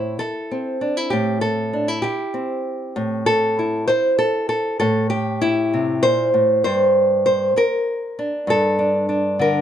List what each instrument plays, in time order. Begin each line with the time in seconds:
Already playing: nylon-string guitar A2 E4 C5
0.19 nylon-string guitar A4, muted nylon-string guitar stroke
0.51 nylon-string guitar C4
0.81 nylon-string guitar D4
0.97 nylon-string guitar E4
1.10 nylon-string guitar A2 G4
1.41 nylon-string guitar A4
1.73 nylon-string guitar D4
1.88 nylon-string guitar E4
2.02 nylon-string guitar G4, muted nylon-string guitar stroke
2.34 nylon-string guitar C4
2.96 nylon-string guitar A2
3.26 nylon-string guitar A4
3.59 nylon-string guitar E4
3.88 nylon-string guitar C5, muted nylon-string guitar stroke
4.19 nylon-string guitar A4
4.49 nylon-string guitar A4
4.80 nylon-string guitar A2 A4
5.10 nylon-string guitar G4
5.41 nylon-string guitar E4
5.74 nylon-string guitar C3
6.03 nylon-string guitar A#2 C5
6.34 nylon-string guitar A2
6.64 nylon-string guitar G2 C5
7.26 nylon-string guitar C5
7.56 nylon-string guitar A#4, muted nylon-string guitar stroke
8.19 nylon-string guitar D4
8.47 nylon-string guitar G2 A4
8.79 nylon-string guitar D4
9.09 nylon-string guitar D4
9.39 nylon-string guitar D3 A#4